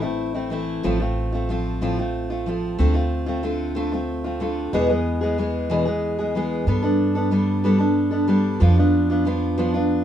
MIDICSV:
0, 0, Header, 1, 3, 480
1, 0, Start_track
1, 0, Tempo, 647249
1, 624, Time_signature, 6, 3, 24, 8
1, 7448, End_track
2, 0, Start_track
2, 0, Title_t, "Steel-string acoustic guitar"
2, 0, Program_c, 0, 25
2, 13, Note_on_c, 0, 64, 44
2, 22, Note_on_c, 0, 60, 42
2, 28, Note_on_c, 0, 57, 37
2, 246, Note_off_c, 0, 64, 0
2, 253, Note_off_c, 0, 60, 0
2, 255, Note_on_c, 0, 64, 40
2, 262, Note_off_c, 0, 57, 0
2, 262, Note_on_c, 0, 60, 41
2, 271, Note_on_c, 0, 57, 33
2, 371, Note_off_c, 0, 57, 0
2, 371, Note_on_c, 0, 52, 47
2, 377, Note_off_c, 0, 60, 0
2, 380, Note_off_c, 0, 64, 0
2, 380, Note_on_c, 0, 57, 49
2, 385, Note_on_c, 0, 60, 58
2, 390, Note_on_c, 0, 64, 63
2, 617, Note_off_c, 0, 57, 0
2, 617, Note_off_c, 0, 60, 0
2, 618, Note_off_c, 0, 52, 0
2, 619, Note_on_c, 0, 45, 66
2, 622, Note_on_c, 0, 53, 68
2, 626, Note_on_c, 0, 57, 74
2, 626, Note_on_c, 0, 60, 65
2, 627, Note_off_c, 0, 64, 0
2, 630, Note_on_c, 0, 65, 66
2, 731, Note_off_c, 0, 65, 0
2, 740, Note_on_c, 0, 65, 45
2, 742, Note_off_c, 0, 45, 0
2, 743, Note_off_c, 0, 53, 0
2, 743, Note_off_c, 0, 60, 0
2, 745, Note_off_c, 0, 57, 0
2, 752, Note_on_c, 0, 60, 41
2, 757, Note_on_c, 0, 57, 39
2, 973, Note_off_c, 0, 65, 0
2, 982, Note_on_c, 0, 65, 47
2, 985, Note_off_c, 0, 60, 0
2, 991, Note_off_c, 0, 57, 0
2, 993, Note_on_c, 0, 60, 42
2, 1002, Note_on_c, 0, 57, 38
2, 1103, Note_off_c, 0, 57, 0
2, 1104, Note_off_c, 0, 65, 0
2, 1104, Note_on_c, 0, 53, 51
2, 1106, Note_off_c, 0, 60, 0
2, 1112, Note_on_c, 0, 57, 54
2, 1115, Note_on_c, 0, 60, 57
2, 1120, Note_on_c, 0, 65, 53
2, 1340, Note_off_c, 0, 53, 0
2, 1345, Note_off_c, 0, 60, 0
2, 1346, Note_off_c, 0, 57, 0
2, 1346, Note_off_c, 0, 65, 0
2, 1346, Note_on_c, 0, 45, 60
2, 1349, Note_on_c, 0, 53, 67
2, 1354, Note_on_c, 0, 60, 56
2, 1355, Note_on_c, 0, 57, 65
2, 1355, Note_on_c, 0, 65, 67
2, 1465, Note_off_c, 0, 65, 0
2, 1466, Note_off_c, 0, 45, 0
2, 1467, Note_off_c, 0, 53, 0
2, 1470, Note_off_c, 0, 57, 0
2, 1470, Note_off_c, 0, 60, 0
2, 1474, Note_on_c, 0, 65, 44
2, 1480, Note_on_c, 0, 60, 37
2, 1488, Note_on_c, 0, 57, 36
2, 1697, Note_off_c, 0, 65, 0
2, 1706, Note_off_c, 0, 60, 0
2, 1706, Note_on_c, 0, 65, 48
2, 1711, Note_off_c, 0, 57, 0
2, 1715, Note_on_c, 0, 60, 38
2, 1720, Note_on_c, 0, 57, 34
2, 1826, Note_off_c, 0, 57, 0
2, 1826, Note_off_c, 0, 65, 0
2, 1826, Note_on_c, 0, 53, 54
2, 1830, Note_off_c, 0, 60, 0
2, 1835, Note_on_c, 0, 57, 56
2, 1841, Note_on_c, 0, 60, 57
2, 1845, Note_on_c, 0, 65, 56
2, 2057, Note_off_c, 0, 57, 0
2, 2061, Note_off_c, 0, 60, 0
2, 2062, Note_off_c, 0, 53, 0
2, 2065, Note_on_c, 0, 50, 62
2, 2066, Note_on_c, 0, 57, 71
2, 2068, Note_off_c, 0, 65, 0
2, 2070, Note_on_c, 0, 60, 69
2, 2077, Note_on_c, 0, 65, 83
2, 2170, Note_off_c, 0, 65, 0
2, 2178, Note_off_c, 0, 60, 0
2, 2179, Note_on_c, 0, 65, 49
2, 2186, Note_off_c, 0, 50, 0
2, 2186, Note_off_c, 0, 57, 0
2, 2187, Note_on_c, 0, 60, 43
2, 2198, Note_on_c, 0, 57, 40
2, 2411, Note_off_c, 0, 65, 0
2, 2420, Note_on_c, 0, 65, 49
2, 2424, Note_off_c, 0, 60, 0
2, 2433, Note_off_c, 0, 57, 0
2, 2433, Note_on_c, 0, 60, 45
2, 2440, Note_on_c, 0, 57, 41
2, 2537, Note_off_c, 0, 57, 0
2, 2542, Note_on_c, 0, 50, 51
2, 2543, Note_off_c, 0, 60, 0
2, 2544, Note_off_c, 0, 65, 0
2, 2546, Note_on_c, 0, 57, 62
2, 2552, Note_on_c, 0, 60, 61
2, 2557, Note_on_c, 0, 65, 60
2, 2771, Note_off_c, 0, 50, 0
2, 2780, Note_off_c, 0, 57, 0
2, 2780, Note_on_c, 0, 50, 58
2, 2783, Note_off_c, 0, 60, 0
2, 2784, Note_off_c, 0, 65, 0
2, 2789, Note_on_c, 0, 57, 60
2, 2792, Note_on_c, 0, 60, 67
2, 2792, Note_on_c, 0, 65, 63
2, 2898, Note_off_c, 0, 65, 0
2, 2904, Note_off_c, 0, 50, 0
2, 2906, Note_off_c, 0, 60, 0
2, 2907, Note_on_c, 0, 65, 46
2, 2909, Note_off_c, 0, 57, 0
2, 2915, Note_on_c, 0, 60, 41
2, 2922, Note_on_c, 0, 57, 37
2, 3138, Note_off_c, 0, 65, 0
2, 3147, Note_on_c, 0, 65, 43
2, 3150, Note_off_c, 0, 60, 0
2, 3155, Note_off_c, 0, 57, 0
2, 3158, Note_on_c, 0, 60, 37
2, 3166, Note_on_c, 0, 57, 36
2, 3260, Note_off_c, 0, 57, 0
2, 3263, Note_on_c, 0, 50, 54
2, 3267, Note_off_c, 0, 60, 0
2, 3267, Note_off_c, 0, 65, 0
2, 3269, Note_on_c, 0, 57, 57
2, 3276, Note_on_c, 0, 60, 54
2, 3277, Note_on_c, 0, 65, 55
2, 3506, Note_off_c, 0, 50, 0
2, 3508, Note_on_c, 0, 40, 70
2, 3509, Note_off_c, 0, 57, 0
2, 3509, Note_on_c, 0, 47, 70
2, 3512, Note_off_c, 0, 60, 0
2, 3513, Note_off_c, 0, 65, 0
2, 3513, Note_on_c, 0, 56, 69
2, 3515, Note_on_c, 0, 52, 76
2, 3518, Note_on_c, 0, 59, 74
2, 3520, Note_on_c, 0, 68, 72
2, 3621, Note_off_c, 0, 68, 0
2, 3626, Note_off_c, 0, 59, 0
2, 3628, Note_off_c, 0, 40, 0
2, 3629, Note_off_c, 0, 47, 0
2, 3630, Note_on_c, 0, 68, 43
2, 3631, Note_off_c, 0, 56, 0
2, 3632, Note_off_c, 0, 52, 0
2, 3635, Note_on_c, 0, 59, 46
2, 3639, Note_on_c, 0, 56, 36
2, 3649, Note_on_c, 0, 52, 36
2, 3855, Note_off_c, 0, 68, 0
2, 3864, Note_on_c, 0, 68, 45
2, 3865, Note_off_c, 0, 59, 0
2, 3870, Note_off_c, 0, 56, 0
2, 3874, Note_off_c, 0, 52, 0
2, 3874, Note_on_c, 0, 59, 42
2, 3879, Note_on_c, 0, 56, 39
2, 3883, Note_on_c, 0, 52, 38
2, 3981, Note_off_c, 0, 52, 0
2, 3986, Note_off_c, 0, 56, 0
2, 3986, Note_off_c, 0, 68, 0
2, 3990, Note_on_c, 0, 52, 51
2, 3991, Note_off_c, 0, 59, 0
2, 3995, Note_on_c, 0, 56, 55
2, 4000, Note_on_c, 0, 59, 54
2, 4008, Note_on_c, 0, 68, 63
2, 4224, Note_off_c, 0, 52, 0
2, 4224, Note_off_c, 0, 56, 0
2, 4224, Note_on_c, 0, 40, 65
2, 4224, Note_on_c, 0, 47, 61
2, 4226, Note_off_c, 0, 59, 0
2, 4227, Note_off_c, 0, 68, 0
2, 4232, Note_on_c, 0, 52, 62
2, 4233, Note_on_c, 0, 56, 63
2, 4235, Note_on_c, 0, 59, 63
2, 4236, Note_on_c, 0, 68, 64
2, 4330, Note_off_c, 0, 68, 0
2, 4339, Note_off_c, 0, 59, 0
2, 4339, Note_on_c, 0, 68, 45
2, 4346, Note_off_c, 0, 47, 0
2, 4346, Note_off_c, 0, 56, 0
2, 4347, Note_off_c, 0, 40, 0
2, 4348, Note_on_c, 0, 59, 39
2, 4351, Note_off_c, 0, 52, 0
2, 4355, Note_on_c, 0, 56, 39
2, 4359, Note_on_c, 0, 52, 37
2, 4579, Note_off_c, 0, 68, 0
2, 4588, Note_off_c, 0, 59, 0
2, 4588, Note_on_c, 0, 68, 44
2, 4590, Note_off_c, 0, 56, 0
2, 4594, Note_off_c, 0, 52, 0
2, 4597, Note_on_c, 0, 59, 38
2, 4599, Note_on_c, 0, 56, 33
2, 4607, Note_on_c, 0, 52, 30
2, 4701, Note_off_c, 0, 52, 0
2, 4707, Note_off_c, 0, 56, 0
2, 4708, Note_off_c, 0, 68, 0
2, 4710, Note_on_c, 0, 52, 51
2, 4711, Note_off_c, 0, 59, 0
2, 4716, Note_on_c, 0, 56, 47
2, 4720, Note_on_c, 0, 59, 50
2, 4724, Note_on_c, 0, 68, 61
2, 4943, Note_off_c, 0, 52, 0
2, 4944, Note_off_c, 0, 59, 0
2, 4946, Note_on_c, 0, 55, 59
2, 4950, Note_off_c, 0, 56, 0
2, 4953, Note_on_c, 0, 59, 66
2, 4954, Note_on_c, 0, 62, 68
2, 4955, Note_off_c, 0, 68, 0
2, 4958, Note_on_c, 0, 69, 64
2, 5052, Note_off_c, 0, 69, 0
2, 5060, Note_off_c, 0, 62, 0
2, 5061, Note_on_c, 0, 69, 48
2, 5068, Note_off_c, 0, 55, 0
2, 5069, Note_on_c, 0, 62, 43
2, 5071, Note_off_c, 0, 59, 0
2, 5079, Note_on_c, 0, 59, 37
2, 5293, Note_off_c, 0, 69, 0
2, 5302, Note_off_c, 0, 62, 0
2, 5302, Note_on_c, 0, 69, 46
2, 5310, Note_off_c, 0, 59, 0
2, 5311, Note_on_c, 0, 62, 43
2, 5319, Note_on_c, 0, 59, 39
2, 5418, Note_off_c, 0, 59, 0
2, 5423, Note_on_c, 0, 55, 56
2, 5425, Note_off_c, 0, 62, 0
2, 5425, Note_off_c, 0, 69, 0
2, 5427, Note_on_c, 0, 59, 60
2, 5434, Note_on_c, 0, 62, 53
2, 5435, Note_on_c, 0, 69, 53
2, 5656, Note_off_c, 0, 55, 0
2, 5662, Note_off_c, 0, 59, 0
2, 5664, Note_on_c, 0, 55, 54
2, 5666, Note_off_c, 0, 62, 0
2, 5670, Note_off_c, 0, 69, 0
2, 5671, Note_on_c, 0, 59, 60
2, 5675, Note_on_c, 0, 62, 59
2, 5679, Note_on_c, 0, 69, 69
2, 5764, Note_off_c, 0, 69, 0
2, 5773, Note_on_c, 0, 69, 44
2, 5776, Note_off_c, 0, 62, 0
2, 5780, Note_off_c, 0, 59, 0
2, 5785, Note_on_c, 0, 62, 41
2, 5786, Note_off_c, 0, 55, 0
2, 5789, Note_on_c, 0, 59, 39
2, 6004, Note_off_c, 0, 69, 0
2, 6013, Note_off_c, 0, 62, 0
2, 6013, Note_on_c, 0, 69, 40
2, 6019, Note_off_c, 0, 59, 0
2, 6021, Note_on_c, 0, 62, 37
2, 6028, Note_on_c, 0, 59, 38
2, 6134, Note_off_c, 0, 59, 0
2, 6137, Note_off_c, 0, 62, 0
2, 6137, Note_on_c, 0, 55, 56
2, 6141, Note_off_c, 0, 69, 0
2, 6143, Note_on_c, 0, 59, 54
2, 6146, Note_on_c, 0, 62, 55
2, 6150, Note_on_c, 0, 69, 61
2, 6372, Note_off_c, 0, 59, 0
2, 6375, Note_off_c, 0, 55, 0
2, 6376, Note_off_c, 0, 62, 0
2, 6378, Note_on_c, 0, 53, 65
2, 6381, Note_on_c, 0, 59, 68
2, 6385, Note_on_c, 0, 62, 73
2, 6388, Note_off_c, 0, 69, 0
2, 6391, Note_on_c, 0, 65, 75
2, 6498, Note_off_c, 0, 65, 0
2, 6502, Note_off_c, 0, 53, 0
2, 6504, Note_off_c, 0, 59, 0
2, 6506, Note_off_c, 0, 62, 0
2, 6507, Note_on_c, 0, 65, 40
2, 6518, Note_on_c, 0, 62, 44
2, 6522, Note_on_c, 0, 59, 39
2, 6738, Note_off_c, 0, 65, 0
2, 6746, Note_on_c, 0, 65, 50
2, 6747, Note_off_c, 0, 62, 0
2, 6754, Note_off_c, 0, 59, 0
2, 6756, Note_on_c, 0, 62, 44
2, 6763, Note_on_c, 0, 59, 42
2, 6860, Note_on_c, 0, 53, 54
2, 6862, Note_off_c, 0, 59, 0
2, 6865, Note_off_c, 0, 62, 0
2, 6866, Note_off_c, 0, 65, 0
2, 6871, Note_on_c, 0, 59, 60
2, 6874, Note_on_c, 0, 62, 59
2, 6878, Note_on_c, 0, 65, 60
2, 7093, Note_off_c, 0, 53, 0
2, 7095, Note_off_c, 0, 59, 0
2, 7102, Note_off_c, 0, 62, 0
2, 7102, Note_on_c, 0, 53, 68
2, 7104, Note_on_c, 0, 59, 62
2, 7106, Note_off_c, 0, 65, 0
2, 7111, Note_on_c, 0, 62, 63
2, 7115, Note_on_c, 0, 65, 67
2, 7213, Note_off_c, 0, 65, 0
2, 7222, Note_on_c, 0, 65, 45
2, 7223, Note_off_c, 0, 53, 0
2, 7224, Note_off_c, 0, 62, 0
2, 7225, Note_off_c, 0, 59, 0
2, 7233, Note_on_c, 0, 62, 41
2, 7241, Note_on_c, 0, 59, 34
2, 7448, Note_off_c, 0, 59, 0
2, 7448, Note_off_c, 0, 62, 0
2, 7448, Note_off_c, 0, 65, 0
2, 7448, End_track
3, 0, Start_track
3, 0, Title_t, "Upright bass"
3, 0, Program_c, 1, 32
3, 0, Note_on_c, 1, 33, 54
3, 590, Note_off_c, 1, 33, 0
3, 625, Note_on_c, 1, 33, 60
3, 2038, Note_off_c, 1, 33, 0
3, 2069, Note_on_c, 1, 38, 59
3, 3481, Note_off_c, 1, 38, 0
3, 3508, Note_on_c, 1, 40, 61
3, 4920, Note_off_c, 1, 40, 0
3, 4944, Note_on_c, 1, 43, 66
3, 6356, Note_off_c, 1, 43, 0
3, 6386, Note_on_c, 1, 41, 65
3, 7448, Note_off_c, 1, 41, 0
3, 7448, End_track
0, 0, End_of_file